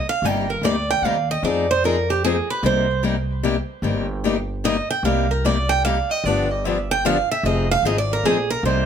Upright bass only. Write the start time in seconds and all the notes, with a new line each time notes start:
0.22 G1
0.62 D2
1.02 D#2
1.43 F2
2.63 C2
3.82 G1
5.03 C2
6.24 G1
7.43 F1
7.83 G#1
8.23 A#1
8.63 C2